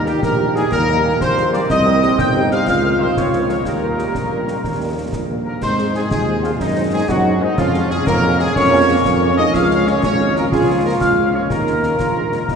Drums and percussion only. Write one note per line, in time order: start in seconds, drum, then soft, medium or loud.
0.06 snare medium
0.23 concert bass drum medium
0.23 snare medium
0.56 snare medium
0.72 concert bass drum medium
0.72 snare medium
1.21 concert bass drum loud
1.21 snare medium
1.38 snare medium
1.53 snare medium
1.70 concert bass drum loud
1.70 snare medium
1.70 crash soft
2.02 snare medium
2.19 concert bass drum loud
2.19 snare medium
2.51 snare medium
2.67 concert bass drum medium
2.67 snare medium
3.17 concert bass drum medium
3.17 snare medium
3.33 snare medium
3.49 snare medium
3.65 concert bass drum medium
3.65 snare medium
3.65 crash soft
3.99 snare medium
4.15 concert bass drum medium
4.15 snare medium
4.48 snare medium
4.64 concert bass drum medium
4.64 snare medium
5.13 concert bass drum medium
5.13 snare medium
5.62 concert bass drum medium
5.62 snare medium
5.62 crash medium
5.78 snare medium
5.95 snare medium
6.11 concert bass drum loud
6.11 snare medium
6.44 snare medium
6.60 concert bass drum medium
6.60 snare medium
7.09 concert bass drum loud
7.09 snare medium
7.58 concert bass drum loud
7.58 snare medium
7.58 crash soft
7.74 snare medium
7.91 snare medium
8.07 concert bass drum loud
8.07 snare medium
8.39 snare medium
8.56 concert bass drum medium
8.56 snare medium
9.05 concert bass drum medium
9.05 snare loud
9.54 concert bass drum medium
9.54 snare medium
9.54 crash soft
9.71 snare medium
9.87 snare medium
10.03 concert bass drum medium
10.03 snare medium
10.36 snare medium
10.52 concert bass drum medium
10.52 snare medium
11.01 concert bass drum medium
11.01 snare medium
11.50 concert bass drum medium
11.50 snare medium
11.50 crash soft
11.67 snare medium
11.83 snare medium
11.99 concert bass drum medium
11.99 snare medium
12.32 snare medium
12.48 concert bass drum medium
12.48 snare medium